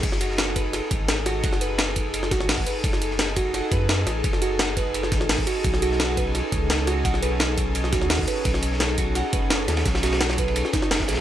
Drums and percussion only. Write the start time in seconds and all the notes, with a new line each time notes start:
0.03 kick, closed hi-hat, crash, ride
0.12 snare
0.21 closed hi-hat, ride
0.30 snare
0.38 snare, closed hi-hat, ride
0.48 ride
0.56 kick, closed hi-hat, ride
0.73 snare, closed hi-hat, ride
0.91 kick, closed hi-hat, ride
1.08 snare, closed hi-hat, ride
1.26 snare, closed hi-hat, ride
1.44 kick, closed hi-hat, ride
1.52 snare, ride
1.61 closed hi-hat, ride
1.78 snare, closed hi-hat, ride
1.88 ride
1.96 kick, closed hi-hat, ride
2.14 closed hi-hat, ride
2.23 snare
2.31 kick, snare, closed hi-hat, ride
2.40 snare
2.49 snare, closed hi-hat, open hi-hat
2.58 kick
2.67 closed hi-hat, ride
2.84 kick, closed hi-hat, ride
2.93 snare
3.01 closed hi-hat, ride
3.11 snare
3.19 snare, closed hi-hat, ride
3.28 ride
3.36 kick, closed hi-hat, ride
3.54 snare, closed hi-hat, ride
3.71 kick, closed hi-hat, ride
3.89 snare, closed hi-hat, ride
4.07 snare, closed hi-hat, ride
4.24 kick, closed hi-hat, ride
4.33 snare, ride
4.41 closed hi-hat, ride
4.59 snare, closed hi-hat, ride
4.68 ride
4.77 kick, closed hi-hat, ride
4.94 closed hi-hat, ride
5.03 snare
5.12 kick, snare, closed hi-hat, ride
5.21 snare
5.29 snare, closed hi-hat, open hi-hat
5.38 kick
5.47 closed hi-hat, ride
5.64 kick, closed hi-hat, ride
5.74 snare
5.82 closed hi-hat, ride
5.91 snare
6.00 snare, closed hi-hat, ride
6.08 ride
6.17 kick, closed hi-hat, ride
6.35 snare, closed hi-hat, ride
6.52 kick, closed hi-hat, ride
6.70 snare, closed hi-hat, ride
6.87 snare, closed hi-hat, ride
7.05 kick, closed hi-hat, ride
7.14 snare, ride
7.23 closed hi-hat, ride
7.40 snare, closed hi-hat, ride
7.49 ride
7.58 kick, closed hi-hat, ride
7.75 closed hi-hat, ride
7.84 snare
7.92 kick, snare, closed hi-hat, ride
8.01 snare
8.10 snare, closed hi-hat, open hi-hat
8.19 kick
8.28 closed hi-hat, ride
8.45 kick, closed hi-hat, ride
8.54 snare
8.62 closed hi-hat, ride
8.72 snare
8.80 snare, closed hi-hat, ride
8.89 ride
8.98 kick, closed hi-hat, ride
9.15 snare, closed hi-hat, ride
9.33 kick, closed hi-hat, ride
9.50 snare, closed hi-hat, ride
9.68 snare, closed hi-hat, ride
9.77 snare, ride
9.86 kick, snare, closed hi-hat, ride
9.95 snare, ride
10.03 snare, closed hi-hat, ride
10.13 snare, ride
10.21 snare, closed hi-hat, ride
10.30 snare, ride
10.38 kick, closed hi-hat, ride
10.48 ride
10.56 closed hi-hat, ride
10.65 snare
10.73 kick, snare, closed hi-hat, ride
10.82 snare
10.91 snare, closed hi-hat, ride
10.95 snare, ride
11.00 kick, snare, ride
11.08 snare, closed hi-hat, ride
11.13 snare, ride
11.17 snare, ride